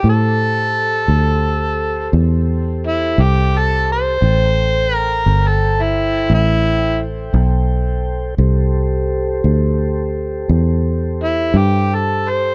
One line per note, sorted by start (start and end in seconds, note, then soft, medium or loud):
0.04 1.05 A2 medium
0.04 4.18 G4 medium
0.04 4.18 A4 medium
0.04 4.17 C5 medium
0.09 2.11 A4 medium
1.08 2.10 D2 medium
2.13 3.14 E2 medium
2.87 3.24 E4 medium
3.18 4.19 C2 medium
3.23 3.59 G4 medium
3.58 3.89 A4 loud
3.92 4.96 C5 loud
4.21 5.23 A1 medium
4.21 8.35 A4 medium
4.21 8.35 C5 medium
4.21 8.35 G5 medium
4.96 5.49 A#4 loud
5.26 6.27 G1 medium
5.47 5.83 A4 medium
5.82 6.31 E4 medium
6.30 7.31 A1 medium
6.35 7.00 E4 loud
7.34 8.36 B1 medium
8.38 9.40 C2 medium
8.38 12.55 G4 medium
8.38 12.55 A4 medium
8.38 12.55 C5 medium
9.44 10.46 D2 medium
10.49 11.51 E2 medium
11.24 11.60 E4 medium
11.54 12.55 G2 medium
11.58 11.96 G4 medium
11.94 12.31 A4 medium
12.29 12.55 C5 medium